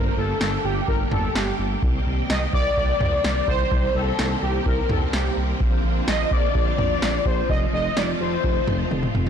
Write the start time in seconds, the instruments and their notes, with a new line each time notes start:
Already playing: analog synth bass G1, string machine D3 G3 A3 A#3 G4, analog polysynth A#4
0.17 analog synth bass G1, analog polysynth A4
0.41 analog synth bass G1, snare
0.64 analog synth bass G1, analog polysynth G4
0.88 analog synth bass G1, analog polysynth A#4, kick
1.11 analog synth bass G1, analog polysynth A4, mid tom
1.35 analog synth bass G1, analog polysynth G4, snare
1.59 analog synth bass G1
1.82 analog synth bass C2, string machine D#3 A#3 C4, kick
2.06 analog synth bass C2
2.30 analog synth bass C2, analog polysynth D#5, snare
2.53 analog synth bass C2, analog polysynth D5, kick
2.77 analog synth bass C2, kick
3.01 analog synth bass C2, mid tom
3.24 analog synth bass C2, snare
3.48 analog synth bass C2, analog polysynth C5, kick
3.72 analog synth bass C2, kick
3.95 analog synth bass C2, analog polysynth A4
4.19 analog synth bass C2, snare
4.42 analog synth bass C2, analog polysynth G4
4.66 analog synth bass C2, analog polysynth A#4, kick
4.89 analog synth bass C2, analog polysynth A4, mid tom
5.13 analog synth bass C2, analog polysynth G4, snare
5.37 analog synth bass C2
5.60 analog synth bass A#1, string machine D3 F3 F4, kick
5.84 analog synth bass A#1
6.08 analog synth bass A#1, analog polysynth D#5, snare
6.31 analog synth bass A#1, analog polysynth D5, kick
6.55 analog synth bass A#1, kick
6.78 analog synth bass A#1, analog polysynth D5, mid tom
7.02 analog synth bass A#1, snare
7.25 analog synth bass A#1, analog polysynth C5, kick
7.49 analog synth bass F1, string machine D#3 A3 C4 F4, analog polysynth D#5, kick
7.73 analog synth bass F1, analog polysynth D#5
7.97 analog synth bass F1, analog polysynth D5, snare
8.20 analog synth bass F1, analog polysynth C5
8.44 analog synth bass F1, kick
8.68 analog synth bass F1, mid tom
8.91 analog synth bass F1, high tom
9.03 mid tom
9.15 analog synth bass F1, mid tom